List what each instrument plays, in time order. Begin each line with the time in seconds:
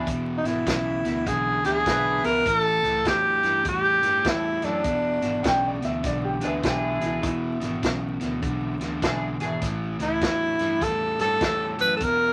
0.06 fingered electric bass E1, overdriven electric guitar E2 B2, kick, closed hi-hat
0.38 tenor saxophone D#4
0.44 fingered electric bass G#1, overdriven electric guitar E2 B2, tenor saxophone E4, snare, closed hi-hat
0.66 fingered electric bass B1, overdriven electric guitar E2 C#3, kick, snare, closed hi-hat
1.04 fingered electric bass D2, overdriven electric guitar E2 B2, snare, closed hi-hat
1.26 fingered electric bass B1, overdriven electric guitar E2 D3, tenor saxophone G#4, kick, snare, closed hi-hat
1.63 fingered electric bass D2, overdriven electric guitar E2 D3, horn section D4 E4 G#4, tenor saxophone G#4, snare, closed hi-hat
1.85 fingered electric bass B1, overdriven electric guitar E2 D3, horn section D4 E4 B4, kick, snare, closed hi-hat
2.23 fingered electric bass C#2, overdriven electric guitar E2 B2, tenor saxophone A#4, snare, closed hi-hat
2.45 fingered electric bass A1, overdriven electric guitar A2 E3, tenor saxophone A4, kick, closed hi-hat
2.83 fingered electric bass C#2, overdriven electric guitar A2 E3, snare, closed hi-hat
3.05 fingered electric bass E2, overdriven electric guitar A2 F#3, tenor saxophone G4, kick, snare, closed hi-hat
3.43 fingered electric bass G2, overdriven electric guitar A2 E3, snare, closed hi-hat
3.64 fingered electric bass E2, overdriven electric guitar A2 G3, tenor saxophone G4, kick, closed hi-hat
4.02 fingered electric bass G2, overdriven electric guitar A2 G3, snare, closed hi-hat
4.24 fingered electric bass E2, overdriven electric guitar A2 G3, horn section C#4 G4 A4, kick, snare, closed hi-hat
4.29 tenor saxophone E4
4.62 fingered electric bass F#2, overdriven electric guitar A2 E3, horn section C#4 G4 A4, tenor saxophone D4, snare, closed hi-hat
4.84 fingered electric bass E1, overdriven electric guitar E2 B2, kick, closed hi-hat
5.21 fingered electric bass G#1, overdriven electric guitar E2 B2, snare, closed hi-hat
5.43 fingered electric bass B1, overdriven electric guitar E2 C#3, upright piano F#5, kick, snare, closed hi-hat
5.47 upright piano G5
5.67 upright piano D5
5.80 fingered electric bass D2, overdriven electric guitar E2 B2, snare, closed hi-hat
5.85 upright piano E5
6.03 fingered electric bass B1, overdriven electric guitar E2 D3, upright piano D5, kick, snare, closed hi-hat
6.25 upright piano G4
6.40 fingered electric bass D2, overdriven electric guitar E2 D3, horn section D4 E4 G#4, snare, closed hi-hat
6.45 upright piano B4
6.62 fingered electric bass B1, overdriven electric guitar E2 D3, horn section D4 E4 G#4, upright piano G4, kick, snare, closed hi-hat
7.00 fingered electric bass C#2, overdriven electric guitar E2 B2, snare, closed hi-hat
7.05 upright piano E4
7.21 fingered electric bass E1, overdriven electric guitar E2 B2, upright piano D#4, kick, closed hi-hat
7.26 upright piano E4
7.60 fingered electric bass G#1, overdriven electric guitar E2 B2, snare, closed hi-hat
7.82 fingered electric bass B1, overdriven electric guitar E2 C#3, kick, snare, closed hi-hat
8.20 fingered electric bass D2, overdriven electric guitar E2 B2, snare, closed hi-hat
8.42 fingered electric bass B1, overdriven electric guitar E2 D3, kick, closed hi-hat
8.80 fingered electric bass D2, overdriven electric guitar E2 D3, snare, closed hi-hat
9.02 fingered electric bass B1, overdriven electric guitar E2 D3, horn section D4 E4 G#4, kick, snare, closed hi-hat
9.39 fingered electric bass G#1, overdriven electric guitar E2 B2, horn section D4 E4 G#4, snare, closed hi-hat
9.62 fingered electric bass A1, overdriven electric guitar A2 E3, kick, snare, closed hi-hat
9.99 fingered electric bass C#2, overdriven electric guitar A2 E3, tenor saxophone E4, snare, closed hi-hat
10.21 fingered electric bass E2, overdriven electric guitar A2 F#3, kick, snare, closed hi-hat
10.59 fingered electric bass G2, overdriven electric guitar A2 E3, snare, closed hi-hat
10.81 fingered electric bass E2, overdriven electric guitar A2 G3, tenor saxophone A4, kick, snare, closed hi-hat
11.18 fingered electric bass G2, overdriven electric guitar A2 G3, horn section C#4 G4 A4, tenor saxophone A4, snare, closed hi-hat
11.40 fingered electric bass E2, overdriven electric guitar A2 G3, horn section C#4 G4 A4, kick, snare, closed hi-hat
11.79 fingered electric bass F#2, overdriven electric guitar A2 E3, tenor saxophone B4, snare, closed hi-hat
11.96 tenor saxophone A4, closed hi-hat
12.01 fingered electric bass E1, overdriven electric guitar E2 B2, tenor saxophone A#4, kick